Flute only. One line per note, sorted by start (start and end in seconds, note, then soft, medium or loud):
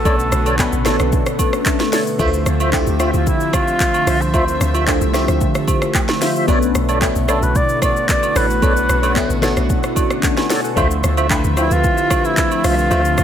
0.00 0.86 A4 loud
3.01 3.13 F4 medium
3.15 3.29 F4 medium
3.27 3.55 E4 loud
3.54 4.23 F4 loud
4.21 4.75 C5 loud
7.29 7.45 A4 medium
7.43 7.58 B4 loud
7.56 7.83 D5 loud
7.83 8.07 D5 loud
8.10 8.38 D5 loud
8.37 9.43 B4 loud
11.58 11.74 E4 loud
11.72 12.27 F4 loud
12.26 12.67 E4 loud
12.65 13.24 F4 loud